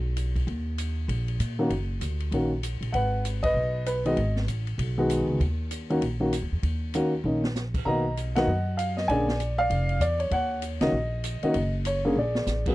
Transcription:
Already playing: upright bass B1
0.17 hi-hat pedal, ride
0.36 kick, ride
0.47 upright bass D#2, kick, ride
0.78 hi-hat pedal, ride
1.08 upright bass A#1, kick, ride
1.28 ride
1.40 upright bass A#2, hi-hat pedal, ride
1.59 upright piano D#3 A#3 C#4 F#4
1.70 upright bass F#1, kick, ride
2.01 upright bass D2, hi-hat pedal, ride
2.20 ride
2.31 upright bass A#1, upright piano D#3 A#3 C#4 F#4, kick, ride
2.63 hi-hat pedal, ride
2.81 upright bass A#1, ride
2.92 upright bass G#1, upright piano B4 F#5, kick, ride
3.25 hi-hat pedal, ride
3.43 upright piano B4 D#5, kick, ride
3.54 upright bass B1
3.86 upright piano B4, hi-hat pedal, ride
4.05 upright piano D#3 G#3 B3 F#4 D#5, ride
4.17 upright bass G#1, kick, ride
4.36 snare
4.47 upright bass A1, hi-hat pedal, ride
4.67 ride
4.78 upright bass B1, kick, ride
4.98 upright piano D#3 G#3 B3 F#4
5.10 hi-hat pedal, ride
5.28 upright bass C#2
5.40 upright bass D#2, kick, ride
5.71 hi-hat pedal, ride
5.90 upright piano D#3 A#3 C#4 F#4, ride
6.01 upright bass A#1, kick, ride
6.20 upright piano D#3 A#3 C#4 F#4
6.33 hi-hat pedal, ride
6.42 upright bass D#2
6.52 upright bass E2
6.63 upright bass D#2, kick, ride
6.94 upright piano D#3 A#3 C#4 F#4, hi-hat pedal, ride
7.24 upright bass A#1, upright piano D#3 A#3 C#4 D#4
7.44 snare
7.55 snare, hi-hat pedal
7.74 kick, crash
7.85 upright bass B1, upright piano D#3 A#3 B3 F#4 D#5 A#5, kick
8.17 hi-hat pedal, ride
8.35 upright piano D#3 A#3 B3 F#4 D#5 F#5, snare, ride
8.47 upright bass F#2
8.77 upright piano F5, hi-hat pedal, ride
8.97 upright piano D#5, snare
9.08 upright bass A#1, upright piano D3 A#3 C#4 G#4 D5 G#5, kick, ride
9.29 snare
9.40 hi-hat pedal, ride
9.58 upright piano D5 F5
9.70 upright bass F1, kick, ride
9.89 ride
10.00 upright bass E2, upright piano D5, hi-hat pedal, ride
10.20 upright piano C#5, ride
10.31 upright bass D#2, upright piano C#5 F#5, kick, ride
10.62 hi-hat pedal, ride
10.81 upright bass C#2, upright piano D#3 A#3 C#4 F#4 D#5, snare, ride
10.92 upright bass A#1
11.24 hi-hat pedal, ride
11.42 upright piano D#3 A#3 C#4 F#4 D#5, muted upright bass stroke, ride
11.54 upright bass F#1, kick, ride
11.85 upright piano C#5, hi-hat pedal, ride
12.05 upright piano D3 A#3 C#4 G#4
12.15 upright bass A#1, upright piano G#4 D5
12.35 snare
12.46 upright bass A1, snare, hi-hat pedal
12.66 upright piano F#3 A#3 B3 G#4, kick, crash

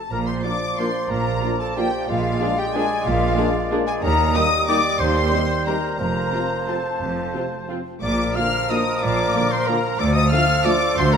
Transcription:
0.10 double bass section A#1, cello section A#2, bassoon F3, clarinet A#4, oboe D5, violin section A#5, flute A#5
0.26 clarinet C5, violin section C6, flute C6
0.44 trombone section F3 A#3, viola section A#3 F4, french horn section A#3 D4, clarinet D5, violin section D6, flute D6
0.77 trombone section F3 A#3, viola section A#3 F4, french horn section A#3 D4, clarinet C5, violin section C6, flute C6
1.10 double bass section A#1, cello section A#2, clarinet A#4, violin section A#5, flute A#5
1.43 trombone section F3 A#3, french horn section A#3 D4, viola section A#3 F4
1.60 clarinet A4, violin section A5, flute A5
1.76 trombone section F3 A#3, viola section A#3 F4, french horn section A#3 D4, clarinet G4, violin section G5, flute G5
2.02 violin section G5
2.07 double bass section A#1, cello section A#2, bassoon G#3, clarinet F4, oboe D5, violin section F5, flute F5
2.41 trombone section F3 G#3, french horn section A#3 D4, viola section D4 G#4
2.58 clarinet G4, violin section G5, flute G5
2.73 trombone section F3 G#3, french horn section A#3 D4, viola section D4 G#4, clarinet G#4, violin section G#5, flute G#5
3.05 double bass section A#1, cello section A#2, clarinet F4, violin section F5, flute F5
3.38 trombone section F3 G#3, french horn section A#3 D4, viola section D4 G#4
3.71 trombone section F3 G#3, french horn section A#3 D4, viola section D4 G#4
3.87 clarinet G#4, flute G#5, violin section G#5
4.03 cello section D#2, double bass section D#2, bassoon G3, clarinet A#4, oboe D#5, violin section A#5, flute A#5
4.34 trombone section D#3 G3, french horn section A#3 D#4, viola section D#4 G4, clarinet D#5, violin section D#6, flute D#6
4.67 trombone section D#3 G3, french horn section A#3 D#4, viola section D#4 G4, clarinet D5, violin section D6, flute D6
5.00 double bass section D#2, cello section D#2, clarinet C5, oboe C5, violin section C6, flute C6
5.31 trombone section D#3 G3, french horn section G3 D#4, viola section C4 G4
5.65 trombone section D#3 G3, french horn section G3 D#4, viola section C4 G4, clarinet A#4, violin section A#5, flute A#5
5.98 double bass section F1, cello section F2, bassoon F3, clarinet A#4, oboe C5, violin section A#5, flute A#5
6.32 trombone section C3 F3, french horn section C4 F4, viola section C4 F4
6.68 trombone section C3 F3, french horn section C4 F4, viola section C4 F4, clarinet A4, violin section A5, flute A5
7.01 double bass section F1, cello section F2
7.34 trombone section C3 F3, french horn section C4 F4, viola section C4 F4
7.68 trombone section C3 F3, french horn section C4 F4, viola section C4 F4
8.02 double bass section A#1, cello section A#2, bassoon F3, oboe A#4, clarinet D5, violin section D6, flute D6
8.35 trombone section D3 F3, viola section A#3 F4, french horn section A#3 F4, clarinet F5, violin section F6, flute F6
8.70 trombone section D3 F3, french horn section A#3 F4, viola section A#3 F4, clarinet D#5, flute D#6, violin section D#6
8.97 violin section D#6
9.02 double bass section A#1, cello section A#2, clarinet D5, violin section D6, flute D6
9.34 trombone section D3 F3, french horn section A#3 F4, viola section A#3 F4
9.51 clarinet C5, violin section C6, flute C6
9.67 trombone section D3 F3, viola section A#3 F4, french horn section A#3 F4, clarinet A#4, violin section A#5, flute A#5
9.99 double bass section D2, cello section D2, bassoon F3, oboe A4, clarinet D5, violin section D6, flute D6
10.14 clarinet D#5, violin section D#6, flute D#6
10.31 trombone section D3 F3, viola section A3 F4, french horn section A3 F4, clarinet F5, violin section F6, flute F6
10.65 trombone section D3 F3, french horn section A3 F4, viola section A3 F4, clarinet D5, violin section D6, flute D6
10.97 double bass section D2, cello section D2, clarinet C5, flute C6, violin section C6
11.12 clarinet A#4, violin section A#5, flute A#5

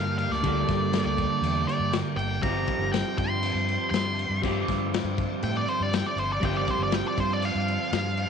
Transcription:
Already playing: fingered electric bass G2, clean electric guitar G2 D3 G3 A#3 D4 A4, synth drone G2 D3, transistor combo organ G3 A#3 G4, lead electric guitar F5
0.18 lead electric guitar F5, crash
0.29 fingered electric bass D2, lead electric guitar D5, snare
0.43 clean electric guitar G2 D3 G3 A#3 D4 A4, kick, crash
0.69 fingered electric bass G2, kick, snare, crash
0.93 snare, crash
1.04 fingered electric bass D2, lead electric guitar D5
1.18 kick, crash
1.41 fingered electric bass E2, crash
1.68 lead electric guitar D5, crash
1.79 fingered electric bass G2
1.93 snare, crash
2.16 fingered electric bass G1, lead electric guitar G5, crash
2.42 fingered electric bass G1, synth drone G2 D3, transistor combo organ F3 C4, clean electric guitar G3 C4 F4 G4, lead electric guitar A#5, kick, crash
2.67 kick, crash
2.79 fingered electric bass G1
2.93 lead electric guitar G5, snare, crash
3.18 fingered electric bass G2, lead electric guitar G5, kick, crash
3.29 lead electric guitar C6
3.43 crash
3.54 fingered electric bass G2
3.68 crash
3.91 fingered electric bass G2, lead electric guitar C6, snare, crash
4.19 crash
4.29 fingered electric bass G2
4.42 clean electric guitar G3 C4 F4 G4, kick, crash
4.68 fingered electric bass G2, kick, snare, crash
4.94 snare, crash
5.04 fingered electric bass G2
5.18 kick, crash
5.43 fingered electric bass A2, lead electric guitar G5, crash
5.57 lead electric guitar D5
5.68 lead electric guitar C5, crash
5.80 fingered electric bass G2, lead electric guitar D5
5.93 lead electric guitar G5, snare, crash
6.06 lead electric guitar D5
6.16 fingered electric bass G1, lead electric guitar C5, crash
6.32 lead electric guitar D5
6.40 fingered electric bass G1, clean electric guitar G3 C4 F4 G4, kick, crash
6.45 lead electric guitar G5, transistor combo organ A5
6.57 lead electric guitar D5
6.68 lead electric guitar C5, kick, crash
6.79 fingered electric bass G1
6.83 lead electric guitar D5
6.92 lead electric guitar G5, snare, crash
7.08 lead electric guitar D5
7.18 fingered electric bass G2, lead electric guitar C5, kick, crash
7.33 lead electric guitar D5
7.42 lead electric guitar F5, crash
7.55 fingered electric bass G2
7.68 crash
7.92 fingered electric bass G2, snare, crash
8.17 crash

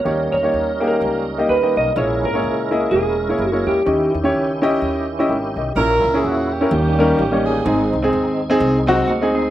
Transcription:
Already playing: electric slide guitar C#5
0.04 upright bass D#2, upright piano D#3 A#3 D#4 G4 C#5, tonewheel organ F#3 C#4 D#4 A#4
0.12 tonewheel organ G3
0.32 upright bass E2, electric slide guitar C#5
0.43 upright piano A#3 D#4 G4 C#5
0.53 upright bass D#2
0.80 upright piano A#3 D#4 G4 G#4
0.87 upright piano A#4
1.01 upright bass C#2
1.38 upright piano A#3 D#4 G4 D#5
1.48 upright bass D#2, electric slide guitar B4
1.62 upright piano A#3 D#4 G4 D#5
1.76 upright bass B1, electric slide guitar D#5
1.96 upright bass A#1, upright piano A#2 A#3 E4 G#4 C#5, tonewheel organ G#3 C#4 E4 A#4, electric slide guitar C#5
2.23 upright bass G#1, electric slide guitar A#4
2.33 upright piano A#3 E4 G#4 C#5
2.43 upright bass C#2
2.71 upright piano A#3 E4 G#4 D#5
2.91 upright bass E1, electric slide guitar G#4
3.29 upright piano A#3 E4 G#4 C#5
3.39 upright bass F#1
3.49 upright piano A#3 E4 G#4, electric slide guitar F#4
3.53 upright piano C#5
3.66 upright bass E2, electric slide guitar G4
3.86 upright bass D#2, upright piano D#3 C#4 E4 G4 D#5, tonewheel organ D#3 C#4 E4 G4
4.14 upright bass E2
4.24 upright piano C#4 E4 G4 C#5
4.35 upright bass C#2
4.62 upright piano C#4 E4 G4 D#5
4.82 upright bass D#2
5.19 upright piano C#4 E4 G4 D#5
5.29 upright bass G#1, upright piano A#4 G5
5.56 upright bass B1, upright piano G4 D#5
5.76 upright bass A#1, upright piano A#2 C#4 E4 A#4, tonewheel organ A#3 C#4 D#4, horn section C#4 E4 A#4
5.83 tonewheel organ E4
6.04 upright bass C#2
6.14 upright piano C#4 E4 G#4
6.24 upright bass E2, horn section F#4
6.51 horn section A#3 C#4 G4
6.61 upright piano C#4 E4 A#4
6.71 upright bass D#2, upright piano D#3, tonewheel organ D#3 G3 A#3 C#4 G4
6.99 upright piano G3 A#3 C#4 D#4 A#4
7.19 upright bass A1
7.32 upright piano G3 A#3 C#4 D#4 C#5
7.46 horn section C4 D#4 G#4
7.65 upright bass G#1, upright piano G#2 C4 D#4 G#4, tonewheel organ G#3 C4 D#4
7.93 upright bass C2
8.02 upright piano C4 D#4 G#4
8.13 upright bass D#2
8.50 upright piano C4 D#4 G#4
8.60 upright bass C2
8.87 clean electric guitar F#3 D#4, upright piano C4 D#4 F#4
9.07 upright bass D2, clean electric guitar A#3 F#4
9.21 upright piano C4 D#4 G#4
9.35 clean electric guitar C4 G#4

